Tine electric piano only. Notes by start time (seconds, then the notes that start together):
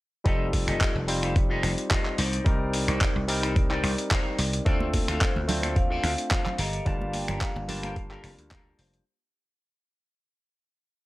0.24 G3 C4 D#4 F4 A4
1.07 G3 C4 D#4 F4 C5
2.45 G3 C4 D#4 A#4 D5
3.27 G3 C4 D#4 A#4 D5
4.65 A3 C4 D4 F4 A4
5.47 A3 C4 D4 F4 C5
6.85 G3 A#3 D4 F4 A5
7.68 G3 A#3 D4 F4 A5